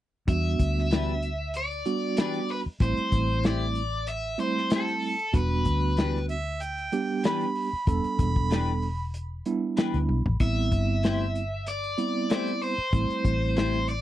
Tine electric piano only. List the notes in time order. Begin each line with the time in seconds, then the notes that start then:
0.28 G3 B3 D4 F#4
1.85 G3 B3 D4 F#4
2.81 G3 A3 C4 E4
4.38 G3 A3 C4 E4
5.33 G3 B3 D4 F#4
6.92 G3 B3 D4 G4
7.88 G3 B3 D4 A4
9.46 G3 B3 D4 E4
9.77 B5
10.40 G3 B3 C4 E4
11.98 G3 B3 C4 E4
12.93 G3 A3 C4 E4